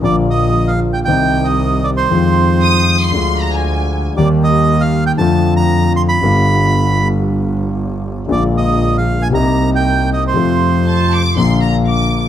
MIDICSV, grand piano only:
0, 0, Header, 1, 2, 480
1, 0, Start_track
1, 0, Key_signature, -3, "minor"
1, 0, Tempo, 516796
1, 36, Time_signature, 4, 2, 24, 8
1, 9156, Tempo, 507185
1, 11453, End_track
2, 0, Start_track
2, 0, Title_t, "Grand piano"
2, 0, Program_c, 0, 0
2, 1, Note_on_c, 0, 50, 43
2, 11, Note_on_c, 0, 53, 39
2, 16, Note_on_c, 0, 34, 48
2, 19, Note_on_c, 0, 46, 53
2, 23, Note_on_c, 0, 58, 41
2, 35, Note_on_c, 0, 65, 51
2, 947, Note_off_c, 0, 50, 0
2, 952, Note_off_c, 0, 53, 0
2, 955, Note_off_c, 0, 34, 0
2, 956, Note_off_c, 0, 46, 0
2, 959, Note_off_c, 0, 58, 0
2, 964, Note_off_c, 0, 65, 0
2, 979, Note_on_c, 0, 51, 45
2, 995, Note_on_c, 0, 36, 52
2, 997, Note_on_c, 0, 55, 44
2, 998, Note_on_c, 0, 48, 56
2, 1003, Note_on_c, 0, 60, 42
2, 1012, Note_on_c, 0, 63, 51
2, 1908, Note_off_c, 0, 51, 0
2, 1916, Note_off_c, 0, 36, 0
2, 1917, Note_off_c, 0, 48, 0
2, 1917, Note_off_c, 0, 55, 0
2, 1920, Note_off_c, 0, 60, 0
2, 1924, Note_off_c, 0, 63, 0
2, 1942, Note_on_c, 0, 51, 45
2, 1957, Note_on_c, 0, 56, 43
2, 1962, Note_on_c, 0, 41, 54
2, 1965, Note_on_c, 0, 53, 53
2, 1968, Note_on_c, 0, 60, 42
2, 1984, Note_on_c, 0, 65, 52
2, 2860, Note_off_c, 0, 51, 0
2, 2867, Note_off_c, 0, 56, 0
2, 2870, Note_off_c, 0, 41, 0
2, 2871, Note_off_c, 0, 53, 0
2, 2873, Note_off_c, 0, 60, 0
2, 2881, Note_off_c, 0, 65, 0
2, 2892, Note_on_c, 0, 50, 59
2, 2902, Note_on_c, 0, 53, 41
2, 2911, Note_on_c, 0, 38, 56
2, 2918, Note_on_c, 0, 56, 45
2, 2933, Note_on_c, 0, 65, 53
2, 3813, Note_off_c, 0, 53, 0
2, 3817, Note_off_c, 0, 38, 0
2, 3817, Note_off_c, 0, 50, 0
2, 3821, Note_off_c, 0, 56, 0
2, 3829, Note_off_c, 0, 65, 0
2, 3855, Note_on_c, 0, 51, 45
2, 3865, Note_on_c, 0, 55, 44
2, 3869, Note_off_c, 0, 51, 0
2, 3878, Note_on_c, 0, 39, 57
2, 3878, Note_on_c, 0, 51, 63
2, 3882, Note_on_c, 0, 58, 46
2, 3892, Note_on_c, 0, 67, 54
2, 4766, Note_off_c, 0, 55, 0
2, 4772, Note_off_c, 0, 51, 0
2, 4773, Note_off_c, 0, 39, 0
2, 4774, Note_off_c, 0, 58, 0
2, 4779, Note_off_c, 0, 67, 0
2, 4804, Note_on_c, 0, 50, 54
2, 4817, Note_on_c, 0, 57, 52
2, 4820, Note_on_c, 0, 53, 62
2, 4823, Note_on_c, 0, 41, 64
2, 4823, Note_on_c, 0, 60, 50
2, 4842, Note_on_c, 0, 65, 58
2, 5720, Note_off_c, 0, 50, 0
2, 5726, Note_off_c, 0, 57, 0
2, 5728, Note_off_c, 0, 53, 0
2, 5729, Note_off_c, 0, 41, 0
2, 5729, Note_off_c, 0, 60, 0
2, 5738, Note_off_c, 0, 65, 0
2, 5760, Note_on_c, 0, 50, 44
2, 5774, Note_on_c, 0, 55, 42
2, 5782, Note_on_c, 0, 43, 60
2, 5783, Note_on_c, 0, 59, 41
2, 5786, Note_on_c, 0, 31, 59
2, 5803, Note_on_c, 0, 65, 56
2, 7603, Note_off_c, 0, 50, 0
2, 7610, Note_off_c, 0, 55, 0
2, 7614, Note_off_c, 0, 43, 0
2, 7614, Note_off_c, 0, 59, 0
2, 7616, Note_off_c, 0, 31, 0
2, 7624, Note_off_c, 0, 65, 0
2, 7682, Note_on_c, 0, 50, 43
2, 7692, Note_on_c, 0, 56, 39
2, 7695, Note_on_c, 0, 34, 56
2, 7702, Note_on_c, 0, 46, 53
2, 7704, Note_on_c, 0, 58, 41
2, 7716, Note_on_c, 0, 65, 48
2, 8613, Note_off_c, 0, 50, 0
2, 8618, Note_off_c, 0, 56, 0
2, 8619, Note_off_c, 0, 34, 0
2, 8623, Note_off_c, 0, 46, 0
2, 8624, Note_off_c, 0, 58, 0
2, 8630, Note_off_c, 0, 65, 0
2, 8639, Note_on_c, 0, 48, 47
2, 8653, Note_off_c, 0, 48, 0
2, 8654, Note_on_c, 0, 55, 44
2, 8657, Note_on_c, 0, 36, 58
2, 8660, Note_on_c, 0, 48, 54
2, 8665, Note_on_c, 0, 58, 41
2, 8682, Note_on_c, 0, 63, 53
2, 9578, Note_off_c, 0, 55, 0
2, 9579, Note_off_c, 0, 36, 0
2, 9581, Note_off_c, 0, 48, 0
2, 9583, Note_off_c, 0, 58, 0
2, 9592, Note_off_c, 0, 63, 0
2, 9607, Note_on_c, 0, 48, 47
2, 9619, Note_on_c, 0, 53, 55
2, 9627, Note_on_c, 0, 41, 54
2, 9629, Note_on_c, 0, 57, 43
2, 9644, Note_on_c, 0, 65, 53
2, 10531, Note_off_c, 0, 48, 0
2, 10541, Note_off_c, 0, 41, 0
2, 10542, Note_off_c, 0, 53, 0
2, 10542, Note_off_c, 0, 57, 0
2, 10549, Note_off_c, 0, 65, 0
2, 10572, Note_on_c, 0, 50, 46
2, 10582, Note_on_c, 0, 53, 50
2, 10587, Note_on_c, 0, 46, 56
2, 10591, Note_on_c, 0, 34, 56
2, 10598, Note_on_c, 0, 58, 45
2, 10610, Note_on_c, 0, 65, 53
2, 11453, Note_off_c, 0, 34, 0
2, 11453, Note_off_c, 0, 46, 0
2, 11453, Note_off_c, 0, 50, 0
2, 11453, Note_off_c, 0, 53, 0
2, 11453, Note_off_c, 0, 58, 0
2, 11453, Note_off_c, 0, 65, 0
2, 11453, End_track
0, 0, End_of_file